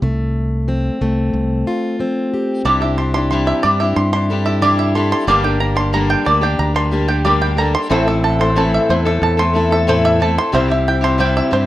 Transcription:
0.02 fingered electric bass C2, steel-string acoustic guitar C3 A3
0.68 steel-string acoustic guitar F3 C4
1.01 fingered electric bass C2, steel-string acoustic guitar A3
1.33 fingered electric bass C2, steel-string acoustic guitar C3
1.67 steel-string acoustic guitar F4
1.99 steel-string acoustic guitar F3 C4
2.34 steel-string acoustic guitar G4
2.65 fingered electric bass C2, steel-string acoustic guitar C3 G3 C4 D4 E4 G4, five-string banjo D5
2.81 steel-string acoustic guitar D4 E4 G4, five-string banjo E5
2.98 steel-string acoustic guitar D4, five-string banjo C6
3.14 steel-string acoustic guitar D4 E4 G4, five-string banjo C6
3.31 steel-string acoustic guitar C3 E3 G3 D4 E4 G4, five-string banjo C6
3.47 five-string banjo E5
3.63 fingered electric bass G2, steel-string acoustic guitar G3 D4 E4 G4, five-string banjo D5
3.80 steel-string acoustic guitar D4 E4 G4, five-string banjo E5
3.96 fingered electric bass G2, steel-string acoustic guitar G2, five-string banjo C6
4.13 steel-string acoustic guitar D4 E4 G4, five-string banjo C6
4.30 steel-string acoustic guitar G3 D4 E4 G4 A4
4.45 steel-string acoustic guitar D4 E4 G4, five-string banjo E5
4.62 steel-string acoustic guitar C3 E3 G3 D4 E4 G4, five-string banjo D5
4.79 five-string banjo E5
4.95 steel-string acoustic guitar G3 D4 E4 G4 A4, five-string banjo C6
5.12 five-string banjo C6
5.27 fingered electric bass G1, steel-string acoustic guitar G2 D3 G3 A#3 D4 G4, five-string banjo D5
5.44 steel-string acoustic guitar G3 A#3 D4 G4, five-string banjo G5
5.60 steel-string acoustic guitar D4, five-string banjo A#5
5.76 steel-string acoustic guitar G3 A#3 D4 G4, five-string banjo C6
5.93 steel-string acoustic guitar G2 D3 G3 A#3 D4 G4, five-string banjo A#5
6.10 five-string banjo G5
6.25 fingered electric bass D2, steel-string acoustic guitar G3 A#3 D4 G4, five-string banjo D5
6.41 steel-string acoustic guitar G3 A#3 D4 G4, five-string banjo G5
6.59 fingered electric bass D2, steel-string acoustic guitar D3, five-string banjo A#5
6.74 steel-string acoustic guitar G3 A#3 D4 G4, five-string banjo C6
6.91 steel-string acoustic guitar G3 A#3 D4 G4
7.08 steel-string acoustic guitar G3 A#3 D4 G4, five-string banjo G5
7.24 steel-string acoustic guitar G2 D3 G3 A#3 D4 G4, five-string banjo D5
7.42 five-string banjo G5
7.57 steel-string acoustic guitar G3 A#3 D4 G4 A4, five-string banjo A#5
7.75 five-string banjo C6
7.89 fingered electric bass A1, felt piano A1 A2 A3 C4 E4 C5, steel-string acoustic guitar A2 E3 A3 C4 E4 A4, five-string banjo C5
8.06 steel-string acoustic guitar A3 C4 E4 A4, five-string banjo E5
8.24 steel-string acoustic guitar A4, five-string banjo A5
8.39 steel-string acoustic guitar A3 C4 E4 A4, five-string banjo C6
8.55 steel-string acoustic guitar A2 E3 A3 C4 E4 A4, five-string banjo A5
8.74 five-string banjo E5
8.89 fingered electric bass E2, steel-string acoustic guitar A3 C4 E4 A4, five-string banjo C5
9.05 steel-string acoustic guitar A3 C4 E4 A4, five-string banjo E5
9.22 fingered electric bass E2, steel-string acoustic guitar A2, five-string banjo A5
9.37 steel-string acoustic guitar A3 C4 E4 A4, five-string banjo C6
9.53 steel-string acoustic guitar A3 C4 E4 A4
9.71 steel-string acoustic guitar A3 C4 E4 A4, five-string banjo E5
9.87 steel-string acoustic guitar A2 E3 A3 C4 E4 A4, five-string banjo C5
10.05 five-string banjo E5
10.20 steel-string acoustic guitar A3 C4 E4 A4, five-string banjo A5
10.38 five-string banjo C6
10.52 fingered electric bass C2, felt piano C2 C3 G3 C4 E4 C5, steel-string acoustic guitar C3 G3 C4 E4 G4, five-string banjo C5
10.68 steel-string acoustic guitar C4 E4 G4, five-string banjo E5
10.88 steel-string acoustic guitar E4, five-string banjo G5
11.01 steel-string acoustic guitar C4 E4 G4, five-string banjo C6
11.18 steel-string acoustic guitar C3 G3 C4 E4 G4, five-string banjo G5
11.37 five-string banjo E5
11.50 fingered electric bass G2, steel-string acoustic guitar G3 C4 E4 G4, five-string banjo C5

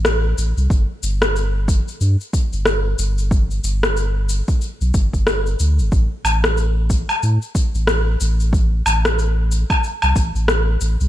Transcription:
Already playing: sub bass A1
0.05 cross-stick, shaker
0.38 sub bass A1, shaker
0.57 sub bass C2, shaker
0.70 sub bass G1, kick, shaker
1.03 sub bass G1, shaker
1.22 cross-stick, shaker
1.36 shaker
1.68 kick, shaker
1.88 shaker
2.01 sub bass G2, shaker
2.21 shaker
2.33 kick, shaker
2.53 sub bass G1, shaker
2.66 cross-stick, shaker
2.98 sub bass G1, shaker
3.18 shaker
3.31 kick, shaker
3.51 shaker
3.63 sub bass G1, shaker
3.83 cross-stick, shaker
3.97 shaker
4.29 shaker
4.48 kick, shaker
4.61 shaker
4.81 sub bass B1, shaker
4.94 sub bass G1, kick, shaker
5.13 sub bass G1, kick, shaker
5.27 cross-stick, shaker
5.46 shaker
5.60 sub bass D2, shaker
5.79 sub bass G1, shaker
5.92 sub bass A1, kick, shaker
6.24 sub bass A1, low woodblock, shaker
6.44 cross-stick, shaker
6.57 shaker
6.90 kick, shaker
7.09 low woodblock, shaker
7.23 sub bass A2, shaker
7.42 shaker
7.55 kick, shaker
7.74 sub bass A1, shaker
7.87 cross-stick, shaker
8.21 sub bass A1, shaker
8.40 shaker
8.53 kick, shaker
8.86 sub bass A1, low woodblock, shaker
9.05 cross-stick, shaker
9.19 shaker
9.52 shaker
9.70 kick, low woodblock, shaker
9.84 shaker
10.02 sub bass C2, low woodblock, shaker
10.16 sub bass A1, kick, shaker
10.35 sub bass A1, shaker
10.48 cross-stick, shaker
10.81 sub bass A1, shaker
11.01 sub bass C2, shaker

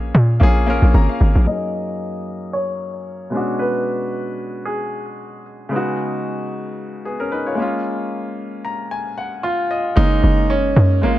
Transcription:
Already playing: log drum bass A#1, grand piano A#3 C#4 F4 G#4 C#5
0.14 log drum bass A#2
0.40 log drum bass A#1, grand piano A#3 C#4 F4 G#4
0.66 grand piano A#3 C#4 F4 A#4
0.82 log drum bass A#1
0.94 log drum bass G#1, grand piano A#5
1.09 grand piano F5
1.21 log drum bass G#1
1.35 log drum bass A#1
1.44 grand piano F#2 A#3 C#4 D#5
1.49 grand piano D#4 G#4
2.53 grand piano C#5
3.30 grand piano B2 G#3 C#4
3.35 grand piano D4 F#4
3.59 grand piano B4
4.65 grand piano G#4
5.69 grand piano C#3 G#3 B3
5.74 grand piano D#4 F#4
7.05 grand piano B3 G#4
7.20 grand piano C#4 A#4
7.32 grand piano D#4 B4
7.46 grand piano F4 C#5
7.55 grand piano G#3 A#3
7.59 grand piano C#4 F4
8.65 grand piano A#5
8.91 grand piano G#5
9.18 grand piano F#5
9.43 grand piano F4 F5
9.71 grand piano D#5
9.96 log drum bass F#1, grand piano G#3 A#3 C#4 D#4
10.23 log drum bass F#1
10.50 grand piano C#4
10.76 log drum bass F#2
11.02 log drum bass G#1, grand piano G#3 A#3 C#4 F4

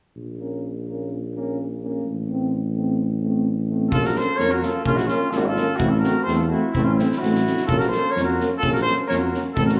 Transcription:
0.16 tuba A#1
0.39 trombone A#3, euphonium C#4
0.87 trombone A#3, euphonium C#4
1.35 trombone A#3, euphonium C#4
1.83 trombone A#3, euphonium C#4
2.04 tuba A1
2.28 trombone A3, euphonium C4
2.76 trombone A3, euphonium C4
3.23 trombone A3, euphonium C4
3.69 trombone A3, euphonium C4
3.91 tuba A#1, trombone A#3, euphonium C#4, flugelhorn F4, trumpet A4, kick
4.02 flugelhorn F#4, trumpet A#4, snare
4.15 trombone A#3, euphonium C#4, flugelhorn A4, trumpet C5, snare
4.37 tuba F2, trombone A#3, euphonium C#4, flugelhorn A#4, trumpet C#5, snare
4.51 flugelhorn F#4, trumpet A#4
4.62 trombone A#3, euphonium C#4, flugelhorn F4, trumpet A4, snare
4.84 tuba A#1, trombone A#3, flugelhorn C#4, euphonium C#4, trumpet F4, kick
4.96 flugelhorn E4, trumpet F#4, snare
5.06 flugelhorn C#4, euphonium C#4, trumpet F4, snare
5.11 trombone A#3
5.30 tuba G#1, trombone A#3, euphonium C#4, flugelhorn F4, trumpet A4, snare
5.38 trumpet F#4
5.42 flugelhorn E4
5.46 flugelhorn F4, trumpet A4
5.56 trombone A#3, euphonium C#4, snare
5.76 tuba A1, flugelhorn E4, trumpet F#4, kick
5.80 trombone A3, euphonium C4
5.89 flugelhorn F4, trumpet A4
5.99 flugelhorn F#4, trumpet A#4
6.04 trombone A3, euphonium C4, snare
6.23 tuba E2, euphonium C4, flugelhorn A4, trumpet C5
6.28 trombone A3, snare
6.35 flugelhorn F4, trumpet A4
6.48 trombone A3, euphonium C4, flugelhorn E4, trumpet F#4
6.71 trumpet E4, kick
6.75 tuba A1, trombone A3, flugelhorn C4, euphonium C4
6.84 flugelhorn C#4, trumpet F4
6.96 flugelhorn C4, euphonium C4, trumpet E4, snare
7.00 trombone A3
7.12 snare
7.18 tuba A1, flugelhorn E4, trumpet F#4
7.23 trombone A3, euphonium C4, snare
7.35 snare
7.46 trombone A3, euphonium C4, snare
7.57 snare
7.65 flugelhorn F4, trumpet A4, kick
7.69 tuba A#1, trombone A#3, euphonium C#4
7.78 flugelhorn F#4, trumpet A#4, snare
7.88 flugelhorn A4, trumpet C5, snare
7.93 trombone A#3, euphonium C#4
8.11 flugelhorn A#4, trumpet C#5
8.16 tuba F2, trombone A#3, euphonium C#4, snare
8.23 flugelhorn F#4, trumpet A#4
8.40 trombone A#3, euphonium C#4, snare
8.58 flugelhorn F4, trumpet A4
8.62 tuba A#1, trombone A#3, euphonium C#4, kick
8.71 flugelhorn F#4, trumpet A#4
8.76 snare
8.82 flugelhorn A4, trumpet C5
8.87 trombone A#3, euphonium C#4, snare
9.07 tuba F2, trombone A#3, flugelhorn A#4, trumpet C#5, snare
9.12 euphonium C#4
9.17 flugelhorn F#4, trumpet A#4
9.34 trombone A#3, euphonium C#4, snare
9.54 tuba A1, euphonium C4, flugelhorn E4, trumpet A4, kick
9.59 trombone A3
9.66 flugelhorn F#4, trumpet A#4, snare

